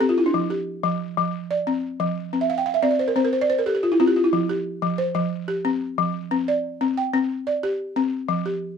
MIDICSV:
0, 0, Header, 1, 2, 480
1, 0, Start_track
1, 0, Tempo, 331492
1, 492, Time_signature, 12, 3, 24, 8
1, 12708, End_track
2, 0, Start_track
2, 0, Title_t, "Balafon"
2, 0, Program_c, 0, 12
2, 8, Note_on_c, 0, 60, 75
2, 10, Note_on_c, 0, 67, 61
2, 131, Note_on_c, 0, 65, 63
2, 235, Note_off_c, 0, 67, 0
2, 258, Note_on_c, 0, 64, 60
2, 355, Note_off_c, 0, 65, 0
2, 376, Note_on_c, 0, 62, 63
2, 479, Note_off_c, 0, 64, 0
2, 491, Note_off_c, 0, 60, 0
2, 494, Note_on_c, 0, 53, 68
2, 598, Note_off_c, 0, 62, 0
2, 728, Note_on_c, 0, 67, 57
2, 975, Note_off_c, 0, 53, 0
2, 1208, Note_on_c, 0, 53, 75
2, 1452, Note_off_c, 0, 67, 0
2, 1684, Note_off_c, 0, 53, 0
2, 1701, Note_on_c, 0, 53, 72
2, 2179, Note_off_c, 0, 53, 0
2, 2181, Note_on_c, 0, 74, 63
2, 2418, Note_on_c, 0, 60, 71
2, 2894, Note_on_c, 0, 53, 76
2, 2897, Note_off_c, 0, 60, 0
2, 2899, Note_off_c, 0, 74, 0
2, 3374, Note_on_c, 0, 60, 65
2, 3375, Note_off_c, 0, 53, 0
2, 3491, Note_on_c, 0, 76, 54
2, 3616, Note_on_c, 0, 77, 62
2, 3717, Note_off_c, 0, 76, 0
2, 3733, Note_on_c, 0, 79, 60
2, 3833, Note_off_c, 0, 77, 0
2, 3851, Note_on_c, 0, 77, 59
2, 3855, Note_off_c, 0, 60, 0
2, 3958, Note_off_c, 0, 79, 0
2, 3969, Note_on_c, 0, 76, 63
2, 4076, Note_off_c, 0, 77, 0
2, 4091, Note_on_c, 0, 60, 72
2, 4092, Note_on_c, 0, 74, 64
2, 4192, Note_off_c, 0, 74, 0
2, 4195, Note_off_c, 0, 76, 0
2, 4210, Note_on_c, 0, 74, 55
2, 4335, Note_on_c, 0, 72, 58
2, 4436, Note_off_c, 0, 74, 0
2, 4454, Note_on_c, 0, 70, 63
2, 4556, Note_off_c, 0, 60, 0
2, 4558, Note_off_c, 0, 72, 0
2, 4573, Note_on_c, 0, 60, 76
2, 4577, Note_on_c, 0, 72, 66
2, 4678, Note_off_c, 0, 70, 0
2, 4701, Note_on_c, 0, 70, 61
2, 4800, Note_off_c, 0, 72, 0
2, 4820, Note_on_c, 0, 72, 61
2, 4922, Note_off_c, 0, 70, 0
2, 4944, Note_on_c, 0, 74, 66
2, 5041, Note_off_c, 0, 72, 0
2, 5054, Note_off_c, 0, 60, 0
2, 5063, Note_on_c, 0, 72, 64
2, 5163, Note_off_c, 0, 74, 0
2, 5192, Note_on_c, 0, 70, 59
2, 5283, Note_off_c, 0, 72, 0
2, 5301, Note_on_c, 0, 69, 59
2, 5304, Note_on_c, 0, 67, 64
2, 5407, Note_off_c, 0, 70, 0
2, 5409, Note_off_c, 0, 67, 0
2, 5427, Note_on_c, 0, 67, 55
2, 5522, Note_off_c, 0, 69, 0
2, 5546, Note_on_c, 0, 65, 60
2, 5644, Note_off_c, 0, 67, 0
2, 5672, Note_on_c, 0, 64, 68
2, 5764, Note_off_c, 0, 65, 0
2, 5788, Note_on_c, 0, 65, 62
2, 5790, Note_on_c, 0, 60, 74
2, 5887, Note_off_c, 0, 64, 0
2, 5901, Note_on_c, 0, 67, 60
2, 6005, Note_off_c, 0, 65, 0
2, 6025, Note_on_c, 0, 65, 55
2, 6121, Note_off_c, 0, 67, 0
2, 6141, Note_on_c, 0, 64, 57
2, 6243, Note_off_c, 0, 65, 0
2, 6262, Note_off_c, 0, 60, 0
2, 6268, Note_on_c, 0, 53, 75
2, 6361, Note_off_c, 0, 64, 0
2, 6508, Note_on_c, 0, 67, 63
2, 6741, Note_off_c, 0, 53, 0
2, 6983, Note_on_c, 0, 53, 76
2, 7215, Note_on_c, 0, 72, 65
2, 7220, Note_off_c, 0, 67, 0
2, 7436, Note_off_c, 0, 53, 0
2, 7453, Note_on_c, 0, 53, 81
2, 7933, Note_off_c, 0, 53, 0
2, 7933, Note_off_c, 0, 72, 0
2, 7935, Note_on_c, 0, 67, 61
2, 8178, Note_on_c, 0, 60, 74
2, 8653, Note_off_c, 0, 67, 0
2, 8655, Note_off_c, 0, 60, 0
2, 8661, Note_on_c, 0, 53, 73
2, 9136, Note_off_c, 0, 53, 0
2, 9140, Note_on_c, 0, 60, 75
2, 9386, Note_on_c, 0, 74, 63
2, 9615, Note_off_c, 0, 60, 0
2, 9861, Note_on_c, 0, 60, 75
2, 10098, Note_off_c, 0, 74, 0
2, 10100, Note_on_c, 0, 79, 62
2, 10315, Note_off_c, 0, 60, 0
2, 10332, Note_on_c, 0, 60, 81
2, 10811, Note_off_c, 0, 60, 0
2, 10814, Note_on_c, 0, 74, 62
2, 10815, Note_off_c, 0, 79, 0
2, 11053, Note_on_c, 0, 67, 71
2, 11530, Note_on_c, 0, 60, 81
2, 11532, Note_off_c, 0, 67, 0
2, 11533, Note_off_c, 0, 74, 0
2, 11997, Note_on_c, 0, 53, 76
2, 12010, Note_off_c, 0, 60, 0
2, 12245, Note_on_c, 0, 67, 59
2, 12484, Note_off_c, 0, 53, 0
2, 12708, Note_off_c, 0, 67, 0
2, 12708, End_track
0, 0, End_of_file